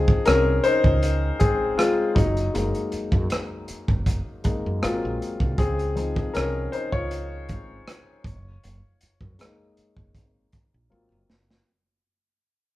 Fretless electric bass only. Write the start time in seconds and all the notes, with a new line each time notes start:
Already playing: C#2
0.28 C2
0.85 C#2
1.42 G#1
2.17 F#1
2.55 F#1
2.94 muted fretless electric bass stroke
3.13 F#2
3.70 muted fretless electric bass stroke
3.89 F#1
4.46 G#1
4.66 F#2
4.84 G#1
5.05 A#1
5.41 C2
5.59 C#2
6.37 C2
6.93 C#2
7.50 G#1
8.25 F#1
8.65 F#1
9.03 muted fretless electric bass stroke
9.22 F#2
9.78 muted fretless electric bass stroke
9.98 F#1
10.16 G#1
10.74 A#1
10.92 G#1
11.12 F#1
11.30 F#1